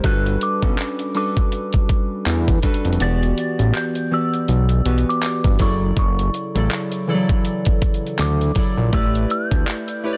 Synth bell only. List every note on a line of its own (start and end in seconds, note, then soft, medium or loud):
0.06 0.43 F#6 loud
0.43 1.12 D6 medium
1.17 2.60 D6 medium
3.02 3.78 A6 loud
3.76 4.14 G6 loud
4.14 5.11 E6 loud
5.09 5.62 D6 medium
5.62 5.76 C#6 medium
5.99 7.05 C#6 medium
8.21 8.96 D6 medium
8.94 9.32 E6 loud
9.31 10.17 G6 loud